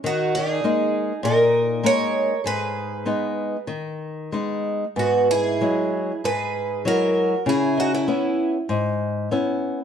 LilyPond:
<<
  \new Staff \with { instrumentName = "Twelve-string acoustic guitar" } { \time 4/4 \key gis \minor \tempo 4 = 98 fis'8 gis'4. ais'4 cis''4 | b'2 r2 | fis'8 gis'4. b'4 ais'4 | gis'8 fis'16 e'4 r2 r16 | }
  \new Staff \with { instrumentName = "Twelve-string acoustic guitar" } { \time 4/4 \key gis \minor dis'8 dis'4. dis'4 ais'4 | gis'2 r2 | b8 e'4. gis'4 fis'4 | e'8 dis'16 cis'4 r2 r16 | }
  \new Staff \with { instrumentName = "Nylon-string guitar" } { \time 4/4 \key gis \minor dis4 <gis ais dis'>4 ais,4 <gis ais dis'>4 | gis,4 <gis b dis'>4 dis4 <gis b dis'>4 | gis,4 <fis gis e'>4 gis,4 <fis gis e'>4 | cis4 <b cis' e'>4 gis,4 <b cis' e'>4 | }
>>